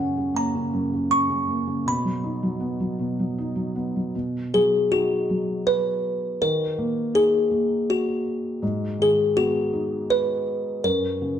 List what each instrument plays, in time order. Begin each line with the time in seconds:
Already playing: felt piano F#2 C#3, music box F#5
0.00 felt piano C#4
0.18 felt piano C#3
0.34 felt piano A#3, music box A#5
0.55 felt piano C#3
0.73 felt piano F#2
0.93 felt piano C#3
1.11 felt piano C#4, music box C#6
1.30 felt piano C#3
1.48 felt piano A#3
1.67 felt piano C#3
1.86 felt piano B2, music box B5
2.05 felt piano F#3
2.24 felt piano D#4
2.43 felt piano F#3
2.60 felt piano B3
2.80 felt piano F#3
2.99 felt piano B2
3.19 felt piano F#3
3.38 felt piano D#4
3.56 felt piano F#3
3.75 felt piano B3
3.96 felt piano F#3
4.15 felt piano B2
4.54 felt piano F#3, music box G#4
4.92 felt piano D#4, music box F#4
5.30 felt piano F#3
5.67 music box B4
6.42 felt piano D#3, music box A#4
6.78 felt piano A#3
7.14 felt piano D#4, music box G#4
7.51 felt piano A#3
7.90 music box F#4
8.62 felt piano G#2
8.99 felt piano D#3, music box G#4
9.36 felt piano B3, music box F#4
9.73 felt piano D#4
10.10 music box B4
10.84 felt piano F#2, music box A#4
11.22 felt piano C#3